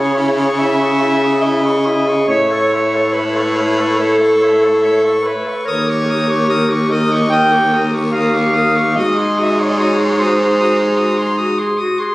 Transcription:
Already playing: baritone saxophone C#3, clarinet G#4, alto saxophone C#5, soprano saxophone C#6
0.16 clarinet E4, soprano saxophone E5
0.39 clarinet G#4, soprano saxophone C#6
0.59 clarinet E4, alto saxophone E5, soprano saxophone E5
0.81 clarinet G#4, soprano saxophone C#6
1.01 clarinet E4, soprano saxophone E5
1.23 clarinet G#4, soprano saxophone C#6
1.42 clarinet E4, alto saxophone D#5, soprano saxophone E5
1.64 clarinet G#4, soprano saxophone C#6
1.86 clarinet E4, soprano saxophone E5
2.07 clarinet G#4, soprano saxophone C#6
2.28 baritone saxophone A2, alto saxophone C#5, clarinet C#5, soprano saxophone E5
2.51 clarinet A4, soprano saxophone C#6
2.74 clarinet C#5, soprano saxophone E5
2.94 clarinet A4, soprano saxophone C#6
3.13 alto saxophone B4, clarinet C#5
3.18 soprano saxophone E5
3.35 clarinet A4, soprano saxophone C#6
3.56 clarinet C#5, soprano saxophone E5
3.77 clarinet A4, soprano saxophone C#6
3.97 alto saxophone A4, clarinet C#5, soprano saxophone E5
4.19 clarinet A4, soprano saxophone C#6
4.40 clarinet C#5
4.44 soprano saxophone E5
4.62 clarinet A4, soprano saxophone C#6
4.82 clarinet C#5, soprano saxophone E5
5.03 clarinet A4, soprano saxophone C#6
5.23 alto saxophone B4, clarinet C#5
5.27 soprano saxophone E5
5.44 clarinet A4
5.48 soprano saxophone C#6
5.63 baritone saxophone D#2, clarinet A#4, alto saxophone C#5
5.68 soprano saxophone D#6
5.85 clarinet G4
5.89 soprano saxophone C#6
6.06 clarinet A#4, soprano saxophone D#6
6.28 clarinet G4, soprano saxophone C#6
6.49 clarinet A#4, soprano saxophone D#6
6.69 clarinet G4, soprano saxophone C#6
6.89 clarinet A#4, alto saxophone D#5, soprano saxophone D#6
7.10 clarinet G4, soprano saxophone C#6
7.30 clarinet A#4, alto saxophone G5, soprano saxophone D#6
7.52 clarinet G4, soprano saxophone C#6
7.73 clarinet A#4, soprano saxophone D#6
7.92 clarinet G4, soprano saxophone C#6
8.12 clarinet A#4, alto saxophone F5, soprano saxophone D#6
8.35 clarinet G4, soprano saxophone C#6
8.54 clarinet A#4, soprano saxophone D#6
8.76 clarinet G4, soprano saxophone C#6
8.96 baritone saxophone G#2, clarinet F#4, alto saxophone D#5, soprano saxophone D#6
9.18 clarinet G#4, soprano saxophone C6
9.39 clarinet F#4, soprano saxophone D#6
9.43 alto saxophone E5
9.51 alto saxophone D#5
9.59 clarinet G#4, alto saxophone C#5, soprano saxophone C6
9.69 alto saxophone D#5
9.78 clarinet F#4, alto saxophone C#5, soprano saxophone D#6
9.99 clarinet G#4, soprano saxophone C6
10.19 clarinet F#4, alto saxophone C5, soprano saxophone D#6
10.38 clarinet G#4, soprano saxophone C6
10.59 clarinet F#4, soprano saxophone D#6
10.78 clarinet G#4, soprano saxophone C6
10.98 clarinet F#4, soprano saxophone D#6
11.18 clarinet G#4, soprano saxophone C6
11.38 clarinet F#4, soprano saxophone D#6
11.59 clarinet G#4, soprano saxophone C6
11.78 clarinet F#4, soprano saxophone D#6
11.99 clarinet G#4, soprano saxophone C6

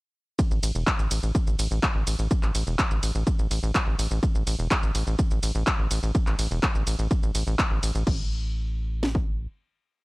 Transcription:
0.39 kick, ride, shaker
0.51 analog synth bass A1, shaker
0.63 analog synth bass A1, open hi-hat, ride, shaker
0.75 analog synth bass E1, shaker
0.87 kick, clap, ride, shaker
0.99 analog synth bass A1, shaker
1.11 analog synth bass A1, open hi-hat, ride, shaker
1.23 analog synth bass A1, shaker
1.35 kick, ride, shaker
1.47 analog synth bass A1, shaker
1.59 analog synth bass A1, open hi-hat, ride, shaker
1.71 analog synth bass A1, shaker
1.83 kick, clap, ride, shaker
1.95 analog synth bass A1
2.07 analog synth bass A1, open hi-hat, ride, shaker
2.19 analog synth bass A1, shaker
2.31 kick, ride, shaker
2.43 analog synth bass A1, clap, shaker
2.55 analog synth bass A1, open hi-hat, ride, shaker
2.67 analog synth bass E1, shaker
2.79 kick, clap, ride, shaker
2.91 analog synth bass A1, shaker
3.03 analog synth bass A1, open hi-hat, ride, shaker
3.15 analog synth bass A1, shaker
3.27 kick, ride, shaker
3.39 analog synth bass A1, shaker
3.51 analog synth bass A1, open hi-hat, ride, shaker
3.63 analog synth bass A1, shaker
3.75 kick, clap, ride, shaker
3.87 analog synth bass A1
3.99 analog synth bass A1, open hi-hat, ride, shaker
4.11 analog synth bass A1, shaker
4.23 kick, ride, shaker
4.35 analog synth bass A1, shaker
4.47 analog synth bass A1, open hi-hat, ride, shaker
4.59 analog synth bass E1, shaker
4.71 kick, clap, ride, shaker
4.83 analog synth bass A1, shaker
4.95 analog synth bass A1, open hi-hat, ride, shaker
5.07 analog synth bass A1, shaker
5.19 kick, ride, shaker
5.31 analog synth bass A1, shaker
5.43 analog synth bass A1, open hi-hat, ride, shaker
5.55 analog synth bass A1, shaker
5.67 kick, clap, ride, shaker
5.79 analog synth bass A1
5.91 analog synth bass A1, open hi-hat, ride, shaker
6.03 analog synth bass A1, shaker
6.15 kick, ride, shaker
6.27 analog synth bass A1, clap, shaker
6.39 analog synth bass A1, open hi-hat, ride, shaker
6.51 analog synth bass E1, shaker
6.63 kick, clap, ride, shaker
6.75 analog synth bass A1, shaker
6.87 analog synth bass A1, open hi-hat, ride, shaker
6.99 analog synth bass A1, shaker
7.11 kick, ride, shaker
7.23 analog synth bass A1, shaker
7.35 analog synth bass A1, open hi-hat, ride, shaker
7.47 analog synth bass A1, shaker
7.59 kick, clap, ride, shaker
7.71 analog synth bass A1
7.83 analog synth bass A1, open hi-hat, ride, shaker
7.95 analog synth bass A1, shaker
8.07 analog synth bass A1, kick, crash
9.03 snare
9.15 kick

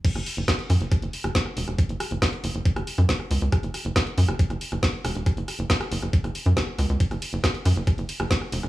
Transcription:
0.05 kick, closed hi-hat, crash
0.15 analog synth bass F#1, cross-stick, closed hi-hat
0.26 open hi-hat
0.37 analog synth bass F#1, closed hi-hat
0.48 kick, cross-stick, snare, closed hi-hat
0.59 closed hi-hat
0.70 analog synth bass F#2, cross-stick, open hi-hat
0.81 analog synth bass F#1, closed hi-hat
0.92 kick, cross-stick, closed hi-hat
1.02 analog synth bass F#1, closed hi-hat
1.13 open hi-hat
1.24 analog synth bass F#1, cross-stick, closed hi-hat
1.35 kick, snare, closed hi-hat
1.46 cross-stick
1.57 analog synth bass E1, open hi-hat
1.68 analog synth bass E1, cross-stick, closed hi-hat
1.78 kick, closed hi-hat
1.89 analog synth bass F#1, closed hi-hat
2.00 cross-stick, open hi-hat
2.11 analog synth bass F#1, closed hi-hat
2.22 kick, cross-stick, snare, closed hi-hat
2.33 closed hi-hat
2.44 analog synth bass F#1, open hi-hat
2.55 analog synth bass F#1, closed hi-hat
2.65 kick, closed hi-hat
2.76 analog synth bass F#1, cross-stick, closed hi-hat
2.87 open hi-hat
2.98 analog synth bass F#2, cross-stick, closed hi-hat
3.09 kick, snare, closed hi-hat
3.20 cross-stick
3.31 analog synth bass C#2, open hi-hat
3.42 analog synth bass C#2, closed hi-hat
3.52 kick, cross-stick, closed hi-hat
3.63 analog synth bass F#1, closed hi-hat
3.74 cross-stick, open hi-hat
3.85 analog synth bass F#1, closed hi-hat
3.96 kick, cross-stick, snare, closed hi-hat
4.07 closed hi-hat
4.18 analog synth bass F#2, open hi-hat
4.28 analog synth bass F#1, cross-stick, closed hi-hat
4.39 kick, closed hi-hat
4.50 analog synth bass F#1, cross-stick, closed hi-hat
4.61 open hi-hat
4.72 analog synth bass F#1, cross-stick, closed hi-hat
4.83 kick, snare, closed hi-hat
5.05 analog synth bass E1, cross-stick, open hi-hat
5.15 analog synth bass E1, closed hi-hat
5.26 kick, cross-stick, closed hi-hat
5.37 analog synth bass F#1, closed hi-hat
5.48 cross-stick, open hi-hat
5.59 analog synth bass F#1, closed hi-hat
5.70 kick, snare, closed hi-hat
5.81 cross-stick, closed hi-hat
5.92 analog synth bass F#1, open hi-hat
6.02 analog synth bass F#1, cross-stick, closed hi-hat
6.13 kick, closed hi-hat
6.24 analog synth bass F#1, cross-stick, closed hi-hat
6.35 open hi-hat
6.46 analog synth bass F#2, closed hi-hat
6.57 kick, cross-stick, snare, closed hi-hat
6.79 analog synth bass C#2, cross-stick, open hi-hat
6.89 analog synth bass C#2, closed hi-hat
7.00 kick, closed hi-hat, ride
7.11 analog synth bass F#1, cross-stick, closed hi-hat
7.22 open hi-hat, ride
7.33 analog synth bass F#1, closed hi-hat
7.44 kick, cross-stick, snare, closed hi-hat, ride
7.55 closed hi-hat
7.65 analog synth bass F#2, cross-stick, open hi-hat, ride
7.76 analog synth bass F#1, closed hi-hat
7.87 kick, cross-stick, closed hi-hat, ride
7.98 analog synth bass F#1, closed hi-hat
8.09 open hi-hat, ride
8.20 analog synth bass F#1, cross-stick, closed hi-hat
8.31 kick, snare, closed hi-hat, ride
8.42 cross-stick
8.52 analog synth bass E1, open hi-hat, ride
8.63 analog synth bass E1, cross-stick, closed hi-hat

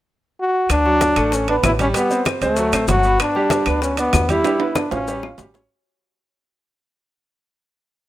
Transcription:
0.40 trombone F#4
0.69 upright bass D2, trombone D4, high bongo, high conga, high timbale, claves, maracas
0.86 grand piano F#3 F#4, high bongo, high conga
1.01 high bongo, high conga, high timbale, low timbale, maracas
1.16 upright bass A1, grand piano A3 A4, high timbale, claves, maracas
1.32 trombone C#4, high bongo, high conga, maracas
1.48 grand piano B3 B4, trombone D4, high bongo, high conga, high timbale
1.63 upright bass A1, trombone E4, high bongo, low bongo, high conga, high timbale, low timbale, claves, maracas
1.79 grand piano G3 G4, trombone C#4, high bongo, high conga, high timbale, maracas
1.94 grand piano G3 G4, trombone B3, high bongo, high timbale, maracas
2.10 grand piano C4 C5, high bongo, high conga, maracas
2.25 high bongo, high conga, high timbale, low timbale, claves, maracas
2.41 upright bass D2, trombone A3, grand piano C4 C5, high conga, high timbale, maracas
2.56 grand piano F#3 F#4, high bongo, high conga, maracas
2.72 upright bass A1, grand piano C4 C5, high bongo, high conga, high timbale, claves, maracas
2.88 upright bass G1, grand piano F#3 F#4, trombone F#4, high bongo, low bongo, high conga, high timbale, low timbale, maracas
3.03 grand piano B3 B4, high bongo, high conga, maracas
3.19 trombone D4, high bongo, high conga, high timbale, claves, maracas
3.35 grand piano G3 G4, high bongo, high conga
3.50 high bongo, high conga, high timbale, low timbale, maracas
3.66 upright bass D2, grand piano B3 B4, high timbale, claves, maracas
3.82 trombone C#4, high bongo, high conga, maracas
3.97 trombone B3, grand piano D4 D5, high bongo, high conga, high timbale, maracas
4.13 upright bass E2, high bongo, low bongo, high conga, high timbale, low timbale, claves, maracas
4.29 grand piano G3 G4, trombone E4, high bongo, high conga, high timbale, maracas
4.44 grand piano G3 G4, high bongo, high conga, high timbale, maracas
4.60 grand piano B3 B4, high bongo, high conga, high timbale
4.75 trombone D4, high bongo, high conga, high timbale, claves, maracas
4.91 upright bass A1, trombone C#4, grand piano F4 F5, high bongo, high conga, low timbale, maracas
5.07 grand piano G3 G4, high bongo, high conga, maracas
5.23 grand piano F4 F5, low bongo, high conga, claves
5.38 upright bass A1, grand piano G3 G4, low bongo, high conga, low timbale, maracas
5.54 grand piano C#4 C#5, low bongo, high conga, low timbale, maracas

